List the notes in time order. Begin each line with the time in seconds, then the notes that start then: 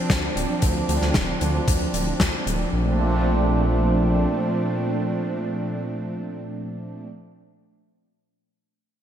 Already playing: F3 C4 D4
0.10 D2, kick, snare, closed hi-hat
0.36 D1, closed hi-hat
0.62 D2, kick, closed hi-hat
0.89 D2, closed hi-hat
1.01 D2, snare
1.14 D1, kick, snare, closed hi-hat
1.41 D2, closed hi-hat
1.68 D2, kick, closed hi-hat
1.94 D1, closed hi-hat
2.20 D2, kick, snare, closed hi-hat
2.46 D1, closed hi-hat
2.73 A#1 A#2 F3 A3 C4 D4